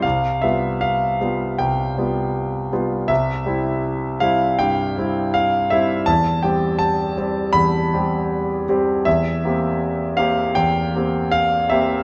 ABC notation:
X:1
M:4/4
L:1/8
Q:1/4=80
K:C
V:1 name="Grand piano"
f e f2 g4 | e3 f g2 f e | a g a2 b4 | [K:Cmix] e3 f g2 f e |]
V:2 name="Grand piano"
C,, [G,B,F]2 [G,B,F] C,, [G,B,F]2 [G,B,F] | C,, [G,CE]2 [G,CE] G,, [G,CE]2 [G,CE] | E,, [G,CG]2 [G,CG] E,, [G,CG]2 [G,CG] | [K:Cmix] E,, [B,CG]2 [B,CG] E,, [B,CG]2 [B,CG] |]